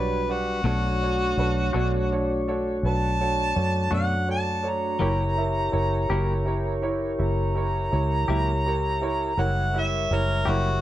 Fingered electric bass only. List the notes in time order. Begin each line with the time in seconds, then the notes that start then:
Already playing: B1
0.64 B1
1.37 B1
1.74 B1
2.83 B1
3.56 F#2
3.92 F#2
5.01 F#1
5.73 F#1
6.10 F#1
7.20 F#1
7.93 C#2
8.28 C#2
9.37 F#1
10.11 F#1
10.47 F#1